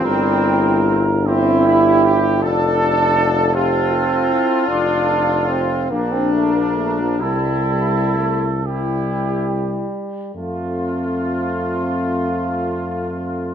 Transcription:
Already playing: trumpet section C4
0.04 tuba G1, trombone G3, euphonium E4, flugelhorn A#4
1.26 euphonium C4, trumpet section C4, trombone E4, flugelhorn G4
1.65 euphonium D4, trumpet section E4
2.05 euphonium E4, trumpet section G4
2.42 tuba F1, trombone D4, euphonium F4, flugelhorn A4, trumpet section A4
3.54 trombone C4, trumpet section F4, euphonium G4, flugelhorn A4
3.91 euphonium F4
4.30 euphonium E4
4.68 tuba F1, trombone D4, euphonium F4
5.49 trombone C4
5.90 tuba A#1, trombone A#3, trumpet section D4, euphonium D4, flugelhorn A#4
6.12 trombone C4
6.33 trombone A3
6.55 trombone A#3
6.76 trombone A3
7.00 trombone F3
7.20 tuba C2, trombone G3, trumpet section E4, euphonium E4, flugelhorn A4
8.14 trombone A3
8.64 trombone G3, trumpet section E4, euphonium E4, flugelhorn G4
10.35 tuba F2, trombone A3, euphonium C4, flugelhorn F4, trumpet section F4

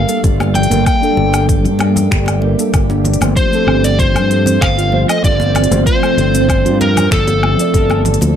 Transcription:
Already playing: ambient pad G3 A4, handpan A#3, electric slide guitar F5
0.07 synth keys G3 A#3 D4 A4, closed hi-hat, shaker
0.23 fretless electric bass G1, handpan G3, kick, closed hi-hat, shaker
0.40 handpan A3, high conga, low woodblock, shaker
0.54 electric slide guitar G5, closed hi-hat, muted conga, low conga
0.63 closed hi-hat
0.69 fretless electric bass G1, synth keys G3 A#3 D4 A#4, handpan A#3, closed hi-hat, high conga, shaker
0.86 ambient pad G4, electric slide guitar G5, kick, closed hi-hat, low woodblock, shaker
1.00 synth keys G3 D4 A4, handpan D4, shaker
1.17 fretless electric bass G1, muted conga
1.34 closed hi-hat, muted conga, low woodblock, shaker
1.49 handpan G3, kick, closed hi-hat, shaker
1.65 fretless electric bass G2, handpan A3, closed hi-hat, shaker
1.79 synth keys G3 D4 A4, handpan A#3, closed hi-hat, muted conga, high conga, low woodblock
1.96 closed hi-hat, low conga, shaker
2.11 fretless electric bass G1, handpan G3, finger snap, kick, shaker
2.26 handpan A3, closed hi-hat, high conga, low woodblock, shaker
2.42 synth keys G3 A#3 D4 A#4, muted conga
2.58 synth keys G3 A#3 D4 A4, handpan A#3, closed hi-hat, shaker
2.74 fretless electric bass G1, kick, closed hi-hat, low woodblock, shaker
2.90 handpan D4, high conga, shaker
3.05 closed hi-hat, low conga
3.14 closed hi-hat
3.21 fretless electric bass G1, synth keys F3 A3 C4 C5, closed hi-hat, high conga, low woodblock, shaker
3.36 handpan F3, ambient pad C4 F4 C5, electric slide guitar C5, kick, closed hi-hat, shaker
3.51 synth keys F3 A3 C4, handpan A3, shaker
3.55 synth keys A4
3.67 fretless electric bass G1, handpan C4, low woodblock
3.84 electric slide guitar D5, closed hi-hat, shaker
3.99 handpan F3, electric slide guitar C5, kick, closed hi-hat, shaker
4.14 fretless electric bass G2, handpan A3, closed hi-hat, low woodblock, shaker
4.29 synth keys F3 A3 C4 A4, closed hi-hat
4.46 handpan C4, closed hi-hat, low conga, shaker
4.61 fretless electric bass G1, electric slide guitar F5, finger snap, kick, low woodblock, shaker
4.78 handpan F4, closed hi-hat, shaker
4.91 synth keys F3 A3 C4 C5, high conga
5.08 synth keys F3 A3 C4 A4, electric slide guitar D#5, closed hi-hat, low woodblock, shaker
5.24 fretless electric bass G1, handpan F3, electric slide guitar D5, kick, closed hi-hat, shaker
5.40 handpan A3, high conga, shaker
5.55 handpan C4, closed hi-hat, muted conga, low conga, low woodblock
5.64 closed hi-hat
5.70 fretless electric bass G1, synth keys F3 A3 C4 C5, closed hi-hat, high conga, shaker
5.86 handpan F3, electric slide guitar C5, ambient pad D5, kick, closed hi-hat, shaker
6.00 synth keys F3 A3 C4, handpan A3, low woodblock, shaker
6.05 synth keys A4
6.17 fretless electric bass G1, closed hi-hat, muted conga
6.34 handpan C4, closed hi-hat, muted conga, shaker
6.49 kick, closed hi-hat, low woodblock, shaker
6.65 fretless electric bass G2, handpan F4, closed hi-hat, shaker
6.79 synth keys F3 C4 C5, electric slide guitar A#4, closed hi-hat, muted conga, high conga
6.97 closed hi-hat, low conga, low woodblock, shaker
7.11 fretless electric bass G1, handpan F3, electric slide guitar A4, finger snap, kick, high conga, shaker
7.27 handpan A3, closed hi-hat, high conga, shaker
7.43 handpan A3, muted conga, low woodblock
7.57 synth keys F3 A3 C4, closed hi-hat, shaker
7.61 synth keys D5
7.74 fretless electric bass G1, handpan A4, kick, closed hi-hat, shaker
7.90 handpan A4, high conga, low woodblock, shaker
8.05 closed hi-hat, low conga
8.14 closed hi-hat
8.21 fretless electric bass D2, handpan F3, closed hi-hat, high conga, shaker

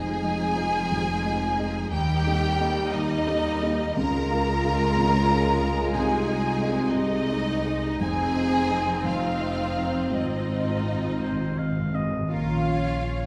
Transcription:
Already playing: felt piano F1 F2, double bass section F1, cello section F2, viola section F3 D#4, french horn section G#3 D#4, violin section G#4 G#5, flute section G#5
0.23 felt piano G#3 F4 D#5
0.57 felt piano G#3 F4 D#5
0.91 felt piano F1 F2
1.25 felt piano G#3 F4 D#5
1.59 felt piano G#3 F4 D#5
1.91 felt piano D#2 D#3, cello section D#2, double bass section D#2, viola section G3 D#4, french horn section A#3 D#4, violin section G4 G5, flute section G5
2.26 felt piano A#3 G4 D#5
2.60 felt piano A#3 G4 D#5
2.92 felt piano D#2 D#3, violin section D#4 D#5, flute section D#5
3.27 felt piano A#3 G4 D#5
3.62 felt piano A#3 G4 D#5
3.96 felt piano C#2 C#3, cello section C#2, double bass section C#2, french horn section G#3 F4, viola section G#3 F4, violin section A#4 A#5, flute section A#5
4.30 felt piano C#4 G#4 F5
4.64 felt piano C#4 G#4 F5
4.96 felt piano C#2 C#3
5.30 felt piano C#4 G#4 F5
5.62 felt piano C#4 G#4 F5
5.94 cello section C2, felt piano C2 C3, double bass section C2, viola section D#4, violin section G#4 G#5, flute section G#5
6.27 felt piano D#4 G#4 D#5
6.61 felt piano D#4 G#4 D#5
6.92 felt piano C2 C3, french horn section D#4, violin section D#4 D#5, flute section D#5
7.29 felt piano D#4 G#4 D#5
7.65 felt piano D#4 G#4 D#5
8.00 double bass section F1, felt piano F1 F2, cello section F2, french horn section C4, viola section C4, violin section G#4 G#5, flute section G#5
8.36 felt piano C4 F4 D#5
8.70 felt piano C4 F4 D#5
9.04 felt piano F1 F2, violin section F4 F5, flute section F5
9.39 felt piano C4 F4 D#5
9.76 felt piano C4 F4 D#5
10.11 felt piano G#1 G#2, double bass section G#1, cello section G#2, violin section D#4 D#5, french horn section F4, viola section F4, flute section D#5
10.21 timpani G#2
10.28 timpani G#2
10.36 timpani G#2
10.44 timpani G#2, felt piano C4
10.49 timpani G#2, felt piano F4 D#5
10.60 timpani G#2
10.68 timpani G#2
10.76 timpani G#2
10.83 timpani G#2, felt piano C4 F4 D#5
10.91 timpani G#2
10.99 timpani G#2
11.08 timpani G#2
11.16 timpani G#2
11.20 felt piano G#1 G#2, timpani G#2, oboe C5
11.32 timpani G#2
11.40 timpani G#2
11.48 timpani G#2
11.56 timpani G#2, felt piano C4 F4 D#5, oboe F5
11.64 timpani G#2
11.72 timpani G#2
11.79 timpani G#2
11.87 timpani G#2
11.94 timpani G#2, felt piano C4 F4 D#5, oboe D#5
12.03 timpani G#2
12.11 timpani G#2
12.19 timpani G#2
12.30 double bass section A#1, felt piano A#2, french horn section C#4 F4, viola section C#4 A#4, cello section F4, violin section C#5 F5, flute section F5
12.66 viola section C#5
13.02 viola section C#5

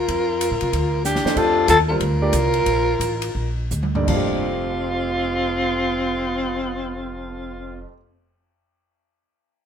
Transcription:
Already playing: alto saxophone F4, soprano saxophone A#4
0.08 upright bass F2, ride
0.41 hi-hat pedal, ride
0.51 upright bass A#2
0.61 upright bass C3, ride
0.73 upright bass D2, ride
1.05 alto saxophone D4, soprano saxophone G4, snare, hi-hat pedal
1.15 snare
1.24 upright bass E2, grand piano F2 A3 D4 G4 C5, snare
1.36 upright bass F2, alto saxophone F4, soprano saxophone A4, kick, crash
1.68 upright bass D#2, alto saxophone F4, soprano saxophone A4, hi-hat pedal, ride
1.89 grand piano G3 C4 F4 A#4, alto saxophone F4, soprano saxophone A#4
2.00 upright bass D2, ride
2.22 grand piano A3 D4 G4 D5
2.33 upright bass C2, hi-hat pedal, ride
2.54 ride
2.66 upright bass A#1, ride
3.00 upright bass A1, hi-hat pedal, ride
3.22 ride
3.35 upright bass A#1
3.71 upright bass D2, hi-hat pedal
3.83 high tom
3.95 grand piano G2 A#3 D#4 A4 D5, floor tom
4.03 grand piano F2 F3
4.08 upright bass F1, grand piano A3, alto saxophone C4, soprano saxophone F4, kick, floor tom, crash
4.13 grand piano D#4 G4

